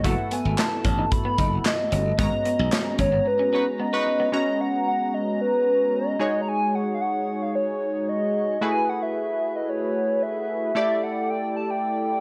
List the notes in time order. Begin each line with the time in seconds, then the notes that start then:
0.04 F#1 A3 B3 E4 F#4 A4 F#5, kick, closed hi-hat
0.18 muted clean electric guitar stroke
0.31 B3 G#5, closed hi-hat
0.45 G#1
0.58 A5, muted clean electric guitar stroke, snare, clap, closed hi-hat
0.60 clap
0.84 A1 C#4, kick, closed hi-hat
0.98 D#4
1.12 B5, muted clean electric guitar stroke, kick, closed hi-hat
1.25 B3
1.38 F#1 D#4, kick, closed hi-hat
1.65 D#5, snare, clap, closed hi-hat
1.67 clap
1.92 G1 C#4, closed hi-hat
2.18 G#1 G#3 B3 C#4 F#4 D#5 A#5, kick, closed hi-hat
2.33 muted clean electric guitar stroke
2.45 B3, closed hi-hat
2.59 B1
2.72 muted clean electric guitar stroke, snare, clap, closed hi-hat
2.74 clap
2.99 G#1 C#4 C#5, kick, closed hi-hat
3.12 B3
3.26 B4, muted clean electric guitar stroke
3.39 C#4
3.53 C#4 D#4 F#4 B4
3.80 B3 D#5
3.93 D#4 F#4 B4
4.07 muted clean electric guitar stroke
4.20 B3
4.32 G#3 B3 C#4 F#4 D#5 A#5
4.61 F#5
4.87 F#5
5.14 D#5
5.41 B4
5.95 D#5
6.19 G#3 D#4 F#4 G#4 C#5
6.41 A#5
6.48 G#5
6.75 F#5
6.94 F5
7.01 F#5
7.42 F5
7.55 C#5
8.09 D#5
8.61 A3 E4 F#4 G#4 B4 G#5
8.89 F#5
9.02 E5
9.56 D#5
9.69 C#5
10.23 E5
10.75 A3 E4 G4 A4 D5 E5
11.03 F#5
11.30 G5
11.57 A5
11.70 G5